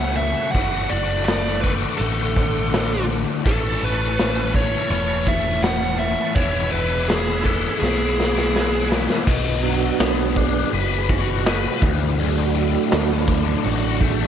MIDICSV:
0, 0, Header, 1, 6, 480
1, 0, Start_track
1, 0, Tempo, 727273
1, 362, Time_signature, 4, 2, 24, 8
1, 9418, End_track
2, 0, Start_track
2, 0, Title_t, "Lead electric guitar"
2, 0, Program_c, 0, 29
2, 0, Note_on_c, 0, 78, 89
2, 107, Note_off_c, 0, 78, 0
2, 110, Note_on_c, 0, 76, 84
2, 339, Note_off_c, 0, 76, 0
2, 342, Note_on_c, 0, 78, 90
2, 591, Note_on_c, 0, 74, 81
2, 599, Note_off_c, 0, 78, 0
2, 818, Note_off_c, 0, 74, 0
2, 826, Note_on_c, 0, 74, 76
2, 1062, Note_off_c, 0, 74, 0
2, 1065, Note_on_c, 0, 71, 70
2, 1132, Note_off_c, 0, 71, 0
2, 1306, Note_on_c, 0, 69, 69
2, 2006, Note_off_c, 0, 69, 0
2, 2291, Note_on_c, 0, 69, 82
2, 2532, Note_off_c, 0, 69, 0
2, 2536, Note_on_c, 0, 71, 81
2, 2981, Note_off_c, 0, 71, 0
2, 3008, Note_on_c, 0, 73, 78
2, 3235, Note_off_c, 0, 73, 0
2, 3243, Note_on_c, 0, 73, 90
2, 3485, Note_on_c, 0, 76, 81
2, 3488, Note_off_c, 0, 73, 0
2, 3705, Note_off_c, 0, 76, 0
2, 3718, Note_on_c, 0, 78, 94
2, 3951, Note_off_c, 0, 78, 0
2, 3954, Note_on_c, 0, 76, 86
2, 4190, Note_on_c, 0, 73, 84
2, 4204, Note_off_c, 0, 76, 0
2, 4433, Note_off_c, 0, 73, 0
2, 4436, Note_on_c, 0, 71, 82
2, 4661, Note_off_c, 0, 71, 0
2, 4676, Note_on_c, 0, 68, 70
2, 4908, Note_off_c, 0, 68, 0
2, 4911, Note_on_c, 0, 69, 71
2, 5146, Note_off_c, 0, 69, 0
2, 5149, Note_on_c, 0, 68, 72
2, 5849, Note_off_c, 0, 68, 0
2, 9418, End_track
3, 0, Start_track
3, 0, Title_t, "Tonewheel organ"
3, 0, Program_c, 1, 16
3, 0, Note_on_c, 1, 69, 56
3, 0, Note_on_c, 1, 78, 51
3, 0, Note_on_c, 1, 85, 60
3, 339, Note_off_c, 1, 85, 0
3, 350, Note_on_c, 1, 86, 61
3, 2253, Note_off_c, 1, 69, 0
3, 2254, Note_off_c, 1, 78, 0
3, 2254, Note_off_c, 1, 86, 0
3, 2280, Note_on_c, 1, 81, 52
3, 2281, Note_on_c, 1, 85, 61
3, 2282, Note_on_c, 1, 71, 56
3, 4180, Note_off_c, 1, 81, 0
3, 4181, Note_off_c, 1, 85, 0
3, 4182, Note_off_c, 1, 71, 0
3, 4204, Note_on_c, 1, 71, 55
3, 4206, Note_on_c, 1, 80, 52
3, 4209, Note_on_c, 1, 88, 62
3, 6105, Note_off_c, 1, 71, 0
3, 6106, Note_off_c, 1, 80, 0
3, 6108, Note_off_c, 1, 88, 0
3, 6354, Note_on_c, 1, 54, 50
3, 6355, Note_on_c, 1, 59, 43
3, 6355, Note_on_c, 1, 66, 82
3, 6361, Note_on_c, 1, 62, 53
3, 6841, Note_on_c, 1, 68, 92
3, 6854, Note_off_c, 1, 66, 0
3, 7053, Note_off_c, 1, 54, 0
3, 7053, Note_off_c, 1, 59, 0
3, 7057, Note_off_c, 1, 62, 0
3, 7074, Note_on_c, 1, 66, 95
3, 7090, Note_off_c, 1, 68, 0
3, 7244, Note_off_c, 1, 66, 0
3, 7247, Note_on_c, 1, 68, 91
3, 7406, Note_on_c, 1, 66, 77
3, 7410, Note_off_c, 1, 68, 0
3, 7570, Note_off_c, 1, 66, 0
3, 7577, Note_on_c, 1, 68, 91
3, 7730, Note_on_c, 1, 66, 78
3, 7736, Note_off_c, 1, 68, 0
3, 7877, Note_off_c, 1, 66, 0
3, 7901, Note_on_c, 1, 64, 74
3, 8056, Note_on_c, 1, 54, 51
3, 8058, Note_off_c, 1, 64, 0
3, 8063, Note_on_c, 1, 68, 87
3, 8064, Note_on_c, 1, 57, 45
3, 8069, Note_on_c, 1, 62, 56
3, 8204, Note_off_c, 1, 68, 0
3, 8222, Note_on_c, 1, 66, 94
3, 8668, Note_off_c, 1, 66, 0
3, 9247, Note_on_c, 1, 68, 80
3, 9418, Note_off_c, 1, 54, 0
3, 9418, Note_off_c, 1, 57, 0
3, 9418, Note_off_c, 1, 62, 0
3, 9418, Note_off_c, 1, 68, 0
3, 9418, End_track
4, 0, Start_track
4, 0, Title_t, "Overdriven electric guitar"
4, 0, Program_c, 2, 29
4, 0, Note_on_c, 2, 42, 66
4, 0, Note_on_c, 2, 49, 62
4, 0, Note_on_c, 2, 54, 63
4, 0, Note_on_c, 2, 57, 68
4, 0, Note_on_c, 2, 61, 70
4, 0, Note_on_c, 2, 66, 70
4, 343, Note_off_c, 2, 66, 0
4, 345, Note_off_c, 2, 61, 0
4, 348, Note_off_c, 2, 54, 0
4, 349, Note_off_c, 2, 49, 0
4, 350, Note_off_c, 2, 42, 0
4, 353, Note_on_c, 2, 38, 76
4, 358, Note_on_c, 2, 45, 84
4, 363, Note_on_c, 2, 50, 88
4, 364, Note_off_c, 2, 57, 0
4, 366, Note_on_c, 2, 57, 92
4, 370, Note_on_c, 2, 66, 93
4, 1062, Note_off_c, 2, 38, 0
4, 1064, Note_off_c, 2, 45, 0
4, 1067, Note_off_c, 2, 50, 0
4, 1068, Note_off_c, 2, 66, 0
4, 1076, Note_on_c, 2, 66, 71
4, 1080, Note_off_c, 2, 57, 0
4, 1083, Note_on_c, 2, 57, 70
4, 1086, Note_on_c, 2, 50, 73
4, 1090, Note_on_c, 2, 45, 60
4, 1091, Note_on_c, 2, 38, 61
4, 2262, Note_off_c, 2, 66, 0
4, 2266, Note_off_c, 2, 45, 0
4, 2266, Note_off_c, 2, 57, 0
4, 2267, Note_off_c, 2, 50, 0
4, 2270, Note_off_c, 2, 38, 0
4, 2274, Note_on_c, 2, 45, 79
4, 2281, Note_on_c, 2, 52, 87
4, 2284, Note_on_c, 2, 57, 87
4, 2285, Note_on_c, 2, 61, 94
4, 2287, Note_on_c, 2, 64, 82
4, 2290, Note_on_c, 2, 69, 95
4, 2982, Note_off_c, 2, 45, 0
4, 2987, Note_off_c, 2, 57, 0
4, 2987, Note_off_c, 2, 61, 0
4, 2988, Note_off_c, 2, 69, 0
4, 2996, Note_off_c, 2, 64, 0
4, 2996, Note_on_c, 2, 69, 79
4, 2999, Note_on_c, 2, 64, 75
4, 3001, Note_on_c, 2, 61, 68
4, 3003, Note_on_c, 2, 57, 76
4, 3004, Note_off_c, 2, 52, 0
4, 3007, Note_on_c, 2, 52, 70
4, 3009, Note_on_c, 2, 45, 64
4, 4183, Note_off_c, 2, 69, 0
4, 4185, Note_off_c, 2, 64, 0
4, 4186, Note_off_c, 2, 61, 0
4, 4187, Note_off_c, 2, 57, 0
4, 4189, Note_off_c, 2, 45, 0
4, 4189, Note_off_c, 2, 52, 0
4, 4192, Note_on_c, 2, 40, 80
4, 4197, Note_on_c, 2, 47, 83
4, 4200, Note_on_c, 2, 52, 80
4, 4203, Note_on_c, 2, 56, 88
4, 4205, Note_on_c, 2, 59, 93
4, 4208, Note_on_c, 2, 64, 89
4, 4902, Note_off_c, 2, 40, 0
4, 4904, Note_off_c, 2, 47, 0
4, 4905, Note_off_c, 2, 64, 0
4, 4906, Note_off_c, 2, 52, 0
4, 4907, Note_off_c, 2, 56, 0
4, 4909, Note_off_c, 2, 59, 0
4, 4913, Note_on_c, 2, 64, 81
4, 4916, Note_on_c, 2, 59, 70
4, 4918, Note_on_c, 2, 56, 66
4, 4921, Note_on_c, 2, 52, 66
4, 4923, Note_on_c, 2, 47, 62
4, 4924, Note_on_c, 2, 40, 62
4, 6104, Note_off_c, 2, 64, 0
4, 6106, Note_off_c, 2, 59, 0
4, 6107, Note_off_c, 2, 56, 0
4, 6108, Note_off_c, 2, 52, 0
4, 6109, Note_off_c, 2, 47, 0
4, 6110, Note_off_c, 2, 40, 0
4, 6117, Note_on_c, 2, 47, 74
4, 6360, Note_on_c, 2, 54, 61
4, 6597, Note_on_c, 2, 59, 67
4, 6846, Note_on_c, 2, 62, 62
4, 7086, Note_on_c, 2, 71, 76
4, 7322, Note_off_c, 2, 47, 0
4, 7326, Note_on_c, 2, 66, 66
4, 7557, Note_off_c, 2, 71, 0
4, 7563, Note_off_c, 2, 54, 0
4, 7565, Note_on_c, 2, 71, 72
4, 7801, Note_on_c, 2, 38, 64
4, 7802, Note_off_c, 2, 59, 0
4, 7805, Note_off_c, 2, 71, 0
4, 7806, Note_off_c, 2, 62, 0
4, 7806, Note_off_c, 2, 66, 0
4, 8034, Note_off_c, 2, 38, 0
4, 8042, Note_on_c, 2, 38, 69
4, 8281, Note_on_c, 2, 45, 65
4, 8514, Note_off_c, 2, 45, 0
4, 8522, Note_on_c, 2, 45, 68
4, 8769, Note_on_c, 2, 50, 66
4, 9006, Note_on_c, 2, 66, 77
4, 9246, Note_off_c, 2, 38, 0
4, 9247, Note_on_c, 2, 57, 64
4, 9418, Note_off_c, 2, 45, 0
4, 9418, Note_off_c, 2, 50, 0
4, 9418, Note_off_c, 2, 57, 0
4, 9418, Note_off_c, 2, 66, 0
4, 9418, End_track
5, 0, Start_track
5, 0, Title_t, "Picked electric bass"
5, 0, Program_c, 3, 34
5, 0, Note_on_c, 3, 37, 83
5, 220, Note_off_c, 3, 37, 0
5, 358, Note_on_c, 3, 30, 86
5, 564, Note_off_c, 3, 30, 0
5, 602, Note_on_c, 3, 30, 77
5, 1215, Note_off_c, 3, 30, 0
5, 1318, Note_on_c, 3, 33, 91
5, 2137, Note_off_c, 3, 33, 0
5, 2279, Note_on_c, 3, 33, 84
5, 2484, Note_off_c, 3, 33, 0
5, 2519, Note_on_c, 3, 33, 77
5, 3133, Note_off_c, 3, 33, 0
5, 3233, Note_on_c, 3, 28, 89
5, 4055, Note_off_c, 3, 28, 0
5, 4195, Note_on_c, 3, 28, 78
5, 4402, Note_off_c, 3, 28, 0
5, 4438, Note_on_c, 3, 28, 79
5, 5054, Note_off_c, 3, 28, 0
5, 5157, Note_on_c, 3, 35, 87
5, 5979, Note_off_c, 3, 35, 0
5, 6118, Note_on_c, 3, 35, 85
5, 6530, Note_off_c, 3, 35, 0
5, 6598, Note_on_c, 3, 35, 95
5, 7010, Note_off_c, 3, 35, 0
5, 7079, Note_on_c, 3, 30, 85
5, 7697, Note_off_c, 3, 30, 0
5, 7801, Note_on_c, 3, 38, 91
5, 8418, Note_off_c, 3, 38, 0
5, 8528, Note_on_c, 3, 38, 91
5, 8938, Note_off_c, 3, 38, 0
5, 9012, Note_on_c, 3, 33, 83
5, 9418, Note_off_c, 3, 33, 0
5, 9418, End_track
6, 0, Start_track
6, 0, Title_t, "Drums"
6, 118, Note_on_c, 9, 46, 50
6, 184, Note_off_c, 9, 46, 0
6, 361, Note_on_c, 9, 36, 95
6, 362, Note_on_c, 9, 46, 62
6, 427, Note_off_c, 9, 36, 0
6, 428, Note_off_c, 9, 46, 0
6, 602, Note_on_c, 9, 46, 46
6, 668, Note_off_c, 9, 46, 0
6, 841, Note_on_c, 9, 46, 63
6, 847, Note_on_c, 9, 38, 100
6, 907, Note_off_c, 9, 46, 0
6, 913, Note_off_c, 9, 38, 0
6, 1080, Note_on_c, 9, 36, 75
6, 1083, Note_on_c, 9, 46, 44
6, 1146, Note_off_c, 9, 36, 0
6, 1149, Note_off_c, 9, 46, 0
6, 1319, Note_on_c, 9, 46, 64
6, 1385, Note_off_c, 9, 46, 0
6, 1561, Note_on_c, 9, 36, 73
6, 1561, Note_on_c, 9, 46, 45
6, 1627, Note_off_c, 9, 36, 0
6, 1627, Note_off_c, 9, 46, 0
6, 1803, Note_on_c, 9, 46, 58
6, 1808, Note_on_c, 9, 38, 93
6, 1869, Note_off_c, 9, 46, 0
6, 1874, Note_off_c, 9, 38, 0
6, 2046, Note_on_c, 9, 46, 43
6, 2112, Note_off_c, 9, 46, 0
6, 2282, Note_on_c, 9, 36, 100
6, 2285, Note_on_c, 9, 46, 58
6, 2348, Note_off_c, 9, 36, 0
6, 2351, Note_off_c, 9, 46, 0
6, 2526, Note_on_c, 9, 46, 41
6, 2592, Note_off_c, 9, 46, 0
6, 2763, Note_on_c, 9, 46, 61
6, 2769, Note_on_c, 9, 38, 92
6, 2829, Note_off_c, 9, 46, 0
6, 2835, Note_off_c, 9, 38, 0
6, 2999, Note_on_c, 9, 36, 76
6, 3002, Note_on_c, 9, 46, 42
6, 3065, Note_off_c, 9, 36, 0
6, 3068, Note_off_c, 9, 46, 0
6, 3240, Note_on_c, 9, 46, 59
6, 3306, Note_off_c, 9, 46, 0
6, 3477, Note_on_c, 9, 36, 80
6, 3479, Note_on_c, 9, 46, 46
6, 3543, Note_off_c, 9, 36, 0
6, 3545, Note_off_c, 9, 46, 0
6, 3716, Note_on_c, 9, 46, 62
6, 3722, Note_on_c, 9, 38, 96
6, 3782, Note_off_c, 9, 46, 0
6, 3788, Note_off_c, 9, 38, 0
6, 3958, Note_on_c, 9, 46, 49
6, 4024, Note_off_c, 9, 46, 0
6, 4194, Note_on_c, 9, 46, 65
6, 4196, Note_on_c, 9, 36, 96
6, 4260, Note_off_c, 9, 46, 0
6, 4262, Note_off_c, 9, 36, 0
6, 4441, Note_on_c, 9, 46, 46
6, 4507, Note_off_c, 9, 46, 0
6, 4680, Note_on_c, 9, 46, 63
6, 4686, Note_on_c, 9, 38, 95
6, 4746, Note_off_c, 9, 46, 0
6, 4752, Note_off_c, 9, 38, 0
6, 4918, Note_on_c, 9, 36, 77
6, 4922, Note_on_c, 9, 46, 46
6, 4984, Note_off_c, 9, 36, 0
6, 4988, Note_off_c, 9, 46, 0
6, 5171, Note_on_c, 9, 38, 54
6, 5237, Note_off_c, 9, 38, 0
6, 5411, Note_on_c, 9, 38, 61
6, 5477, Note_off_c, 9, 38, 0
6, 5531, Note_on_c, 9, 38, 53
6, 5597, Note_off_c, 9, 38, 0
6, 5650, Note_on_c, 9, 38, 69
6, 5716, Note_off_c, 9, 38, 0
6, 5886, Note_on_c, 9, 38, 80
6, 5952, Note_off_c, 9, 38, 0
6, 6007, Note_on_c, 9, 38, 66
6, 6073, Note_off_c, 9, 38, 0
6, 6117, Note_on_c, 9, 82, 73
6, 6119, Note_on_c, 9, 36, 104
6, 6121, Note_on_c, 9, 49, 108
6, 6183, Note_off_c, 9, 82, 0
6, 6185, Note_off_c, 9, 36, 0
6, 6187, Note_off_c, 9, 49, 0
6, 6359, Note_on_c, 9, 82, 60
6, 6425, Note_off_c, 9, 82, 0
6, 6596, Note_on_c, 9, 46, 51
6, 6600, Note_on_c, 9, 82, 76
6, 6602, Note_on_c, 9, 38, 108
6, 6662, Note_off_c, 9, 46, 0
6, 6666, Note_off_c, 9, 82, 0
6, 6668, Note_off_c, 9, 38, 0
6, 6839, Note_on_c, 9, 82, 59
6, 6840, Note_on_c, 9, 36, 77
6, 6905, Note_off_c, 9, 82, 0
6, 6906, Note_off_c, 9, 36, 0
6, 7083, Note_on_c, 9, 82, 84
6, 7085, Note_on_c, 9, 46, 53
6, 7149, Note_off_c, 9, 82, 0
6, 7151, Note_off_c, 9, 46, 0
6, 7321, Note_on_c, 9, 82, 64
6, 7322, Note_on_c, 9, 36, 83
6, 7387, Note_off_c, 9, 82, 0
6, 7388, Note_off_c, 9, 36, 0
6, 7560, Note_on_c, 9, 82, 85
6, 7561, Note_on_c, 9, 46, 49
6, 7567, Note_on_c, 9, 38, 100
6, 7626, Note_off_c, 9, 82, 0
6, 7627, Note_off_c, 9, 46, 0
6, 7633, Note_off_c, 9, 38, 0
6, 7802, Note_on_c, 9, 36, 101
6, 7802, Note_on_c, 9, 82, 67
6, 7868, Note_off_c, 9, 36, 0
6, 7868, Note_off_c, 9, 82, 0
6, 8043, Note_on_c, 9, 46, 58
6, 8045, Note_on_c, 9, 82, 91
6, 8109, Note_off_c, 9, 46, 0
6, 8111, Note_off_c, 9, 82, 0
6, 8284, Note_on_c, 9, 82, 74
6, 8350, Note_off_c, 9, 82, 0
6, 8521, Note_on_c, 9, 82, 90
6, 8522, Note_on_c, 9, 46, 56
6, 8528, Note_on_c, 9, 38, 105
6, 8587, Note_off_c, 9, 82, 0
6, 8588, Note_off_c, 9, 46, 0
6, 8594, Note_off_c, 9, 38, 0
6, 8764, Note_on_c, 9, 36, 79
6, 8765, Note_on_c, 9, 82, 73
6, 8830, Note_off_c, 9, 36, 0
6, 8831, Note_off_c, 9, 82, 0
6, 9002, Note_on_c, 9, 82, 90
6, 9006, Note_on_c, 9, 46, 57
6, 9068, Note_off_c, 9, 82, 0
6, 9072, Note_off_c, 9, 46, 0
6, 9245, Note_on_c, 9, 82, 72
6, 9246, Note_on_c, 9, 36, 84
6, 9311, Note_off_c, 9, 82, 0
6, 9312, Note_off_c, 9, 36, 0
6, 9418, End_track
0, 0, End_of_file